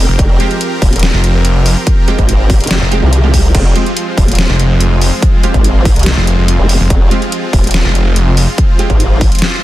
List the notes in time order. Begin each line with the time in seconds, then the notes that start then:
Already playing: F3 C4 F4 G4 A#4
0.09 F1
0.19 F1, kick, closed hi-hat
0.40 G#3 C4 F4 G4, closed hi-hat
0.51 closed hi-hat
0.61 closed hi-hat
0.82 D#1, kick, open hi-hat
0.93 closed hi-hat
0.96 closed hi-hat
0.99 snare, closed hi-hat
1.03 closed hi-hat
1.14 F1
1.24 closed hi-hat
1.45 closed hi-hat
1.66 open hi-hat
1.87 kick, closed hi-hat
2.08 G#3 C4 F4 G4, closed hi-hat
2.19 G#1, kick, closed hi-hat
2.29 closed hi-hat
2.50 kick, open hi-hat
2.60 F1, closed hi-hat
2.64 closed hi-hat
2.67 snare, closed hi-hat
2.71 closed hi-hat
2.82 F1
2.92 G#3 C4 F4 G4, closed hi-hat
3.03 C2
3.13 closed hi-hat
3.23 G#3 C4 F4 G4
3.34 kick, open hi-hat
3.55 F1 G#3 F4, kick, closed hi-hat, crash
3.76 G#3 C4 F4 G4, closed hi-hat
3.86 closed hi-hat
3.97 closed hi-hat
4.18 D#1, kick, open hi-hat
4.28 closed hi-hat
4.32 closed hi-hat
4.35 snare, closed hi-hat
4.39 closed hi-hat
4.49 F1
4.60 closed hi-hat
4.81 closed hi-hat
5.01 open hi-hat
5.22 kick, closed hi-hat
5.43 G#3 C4 F4 G4, closed hi-hat
5.54 G#1, kick, closed hi-hat
5.64 closed hi-hat
5.85 kick, open hi-hat
5.96 C2, closed hi-hat
5.99 closed hi-hat
6.03 snare, closed hi-hat
6.06 closed hi-hat
6.17 F1
6.27 closed hi-hat
6.38 F1
6.48 closed hi-hat
6.59 F1
6.69 open hi-hat
6.80 F1
6.90 F1, kick, closed hi-hat
7.11 G#3 C4 F4 G4, closed hi-hat
7.22 closed hi-hat
7.32 closed hi-hat
7.53 D#1, kick, open hi-hat
7.64 closed hi-hat
7.67 closed hi-hat
7.71 snare, closed hi-hat
7.74 closed hi-hat
7.85 F1
7.95 closed hi-hat
8.16 closed hi-hat
8.37 open hi-hat
8.58 kick, closed hi-hat
8.79 G#3 C4 F4 G4, closed hi-hat
8.90 G#1, kick, closed hi-hat
9.00 closed hi-hat
9.21 kick, open hi-hat
9.32 closed hi-hat
9.35 closed hi-hat
9.39 snare, closed hi-hat
9.42 closed hi-hat